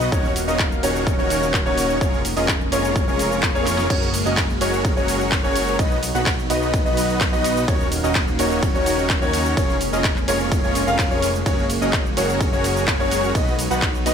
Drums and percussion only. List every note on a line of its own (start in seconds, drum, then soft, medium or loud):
0.01 cabasa soft
0.12 kick loud
0.12 cabasa medium
0.25 cabasa soft
0.36 open hi-hat loud
0.36 cabasa medium
0.48 cabasa soft
0.59 kick loud
0.59 clap loud
0.59 cabasa soft
0.72 cabasa soft
0.83 open hi-hat loud
0.83 cabasa medium
0.96 cabasa soft
1.07 kick loud
1.07 cabasa soft
1.19 cabasa soft
1.30 open hi-hat loud
1.30 cabasa medium
1.43 cabasa soft
1.54 kick loud
1.54 clap loud
1.54 cabasa soft
1.66 cabasa soft
1.78 open hi-hat loud
1.78 cabasa medium
1.90 cabasa soft
2.01 kick loud
2.01 cabasa soft
2.14 cabasa soft
2.25 open hi-hat loud
2.25 cabasa medium
2.37 open hi-hat medium
2.37 cabasa soft
2.48 kick loud
2.48 clap loud
2.48 cabasa soft
2.61 cabasa soft
2.72 open hi-hat loud
2.72 cabasa medium
2.85 cabasa soft
2.96 kick loud
2.96 cabasa soft
3.08 cabasa soft
3.19 open hi-hat loud
3.19 cabasa medium
3.32 cabasa soft
3.43 kick loud
3.43 clap loud
3.43 cabasa soft
3.55 cabasa soft
3.67 snare medium
3.67 open hi-hat loud
3.67 cabasa medium
3.78 snare medium
3.78 cabasa soft
3.90 kick loud
3.90 ride medium
3.90 crash medium
3.90 cabasa soft
4.03 cabasa soft
4.14 open hi-hat loud
4.14 cabasa medium
4.26 cabasa soft
4.37 kick loud
4.37 clap loud
4.37 ride medium
4.37 cabasa soft
4.50 cabasa soft
4.61 open hi-hat loud
4.61 cabasa medium
4.74 cabasa soft
4.85 kick loud
4.85 ride medium
4.85 cabasa soft
4.97 cabasa soft
5.08 open hi-hat loud
5.08 cabasa medium
5.21 cabasa soft
5.32 kick loud
5.32 clap loud
5.32 ride medium
5.32 cabasa soft
5.44 cabasa soft
5.56 open hi-hat loud
5.56 cabasa medium
5.68 cabasa soft
5.79 kick loud
5.79 ride medium
5.79 cabasa soft
5.92 cabasa soft
6.03 open hi-hat loud
6.03 cabasa medium
6.15 cabasa soft
6.26 kick loud
6.26 clap loud
6.26 ride medium
6.26 cabasa soft
6.39 cabasa soft
6.50 open hi-hat loud
6.50 cabasa medium
6.62 cabasa soft
6.74 kick loud
6.74 ride medium
6.74 cabasa soft
6.86 cabasa soft
6.97 open hi-hat loud
6.97 cabasa medium
7.10 cabasa soft
7.21 kick loud
7.21 clap loud
7.21 ride medium
7.21 cabasa soft
7.33 cabasa soft
7.44 open hi-hat loud
7.44 cabasa medium
7.57 cabasa soft
7.68 kick loud
7.68 ride medium
7.68 cabasa soft
7.81 cabasa soft
7.92 open hi-hat loud
7.92 cabasa medium
8.04 cabasa soft
8.15 kick loud
8.15 clap loud
8.15 ride medium
8.15 cabasa soft
8.28 cabasa soft
8.39 open hi-hat loud
8.39 cabasa medium
8.51 cabasa soft
8.63 kick loud
8.63 ride medium
8.63 cabasa soft
8.75 cabasa soft
8.86 open hi-hat loud
8.86 cabasa medium
8.99 cabasa soft
9.10 kick loud
9.10 clap loud
9.10 ride medium
9.10 cabasa soft
9.22 cabasa soft
9.33 open hi-hat loud
9.33 cabasa medium
9.46 cabasa soft
9.57 kick loud
9.57 ride medium
9.57 cabasa soft
9.70 cabasa soft
9.81 open hi-hat loud
9.81 cabasa medium
9.93 cabasa soft
10.04 kick loud
10.04 clap loud
10.04 ride medium
10.04 cabasa soft
10.16 clap soft
10.16 cabasa soft
10.28 open hi-hat loud
10.28 cabasa medium
10.40 cabasa soft
10.52 kick loud
10.52 ride medium
10.52 cabasa soft
10.64 cabasa soft
10.75 open hi-hat loud
10.75 cabasa medium
10.88 cabasa soft
10.99 kick loud
10.99 clap loud
10.99 ride medium
10.99 cabasa soft
11.11 cabasa soft
11.22 open hi-hat loud
11.22 cabasa medium
11.35 cabasa soft
11.46 kick loud
11.46 ride medium
11.46 cabasa soft
11.59 cabasa soft
11.70 open hi-hat loud
11.70 cabasa medium
11.82 cabasa soft
11.93 kick loud
11.93 clap loud
11.93 ride medium
11.93 cabasa soft
12.06 cabasa soft
12.17 open hi-hat loud
12.17 cabasa medium
12.29 cabasa soft
12.41 kick loud
12.41 ride medium
12.41 cabasa soft
12.53 cabasa soft
12.64 open hi-hat loud
12.64 cabasa medium
12.77 cabasa soft
12.88 kick loud
12.88 clap loud
12.88 ride medium
12.88 cabasa soft
13.00 cabasa soft
13.11 open hi-hat loud
13.11 cabasa medium
13.24 cabasa soft
13.35 kick loud
13.35 ride medium
13.35 cabasa soft
13.48 cabasa soft
13.59 open hi-hat loud
13.59 cabasa medium
13.71 cabasa soft
13.82 kick loud
13.82 clap loud
13.82 ride medium
13.82 cabasa soft
13.95 cabasa soft
14.06 open hi-hat loud
14.06 cabasa medium